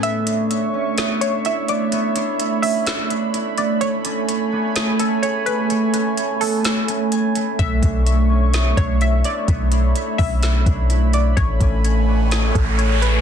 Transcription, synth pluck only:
X:1
M:4/4
L:1/8
Q:1/4=127
K:Bdor
V:1 name="Synth pluck"
e2 z3 c e d | z3 e z3 d | c2 z3 A c B | z3 A4- A |
e2 z3 c e d | z3 e z3 d | c2 z3 A c B |]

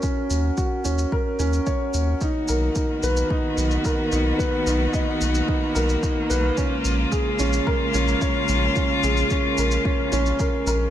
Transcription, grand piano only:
X:1
M:4/4
L:1/8
Q:1/4=110
K:Cblyd
V:1 name="Grand piano"
D z G D B D d z | ^D ^A D =B D z A D | =B ^D ^d z D ^A D B | D z A D B D d z |
D A D B D D B B |]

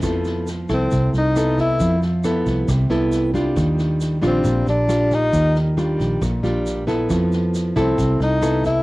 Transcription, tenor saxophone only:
X:1
M:4/4
L:1/8
Q:1/4=136
K:Flyd
V:1 name="Tenor saxophone"
z3 C2 _E2 =E- | E z6 z | z3 C2 D2 _E- | _E z6 z |
z3 C2 _E2 =E |]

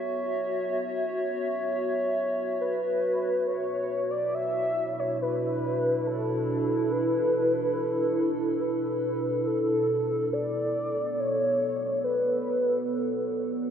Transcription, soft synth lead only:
X:1
M:4/4
L:1/16
Q:1/4=70
K:Bm
V:1 name="Soft synth lead"
z12 B4 | c3 d e3 c B4 A4 | B6 A2 B4 A4 | d4 c4 B6 z2 |]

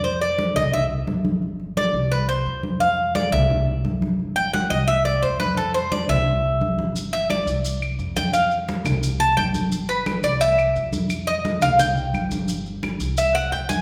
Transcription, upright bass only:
X:1
M:4/4
L:1/8
Q:1/4=174
K:Clyd
V:1 name="Upright bass" clef=bass
=F,,3 C,,3 G,,,2- | G,,,3 C,,3 =F,,2- | =F,,3 C,,3 G,,,2- | G,,,3 C,,3 =F,,2- |
=F,,3 C,,3 G,,,2- | G,,,3 C,,3 =F,,2- | =F,,3 C,,3 G,,,2- | G,,,3 C,,3 =F,,2- |
=F,,3 C,,3 G,,,2- | G,,,3 C,,3 =F,,2 |]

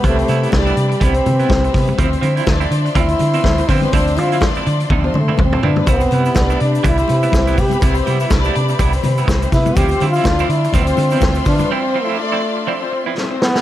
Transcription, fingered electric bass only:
X:1
M:4/4
L:1/8
Q:"Swing 16ths" 1/4=123
K:Ddor
V:1 name="Fingered electric bass" clef=bass
C,, C, C,, C, C,, C, C,, C, | D,, D, D,, D, D,, D, D,, D, | D,, D, D,, D, D,, D, D,, D, | C,, C, C,, C, C,, C, C,, C, |
C,, C, C,, C, C,, C, C,, C, | D,, D, D,, D, D,, D, D,, D, | z8 |]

